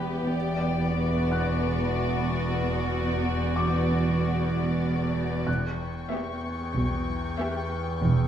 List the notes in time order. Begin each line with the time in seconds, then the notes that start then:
Already playing: E1 E2 B3 G4 B4
0.34 E1 E2 B3 D5
1.00 F#4
1.31 F#5 F#6
3.56 D6
5.47 E1 E2 G5 C#6 F#6
6.11 B3 G4 E5
6.75 B1 B2
7.39 B3 G4 E5
8.03 E1 E2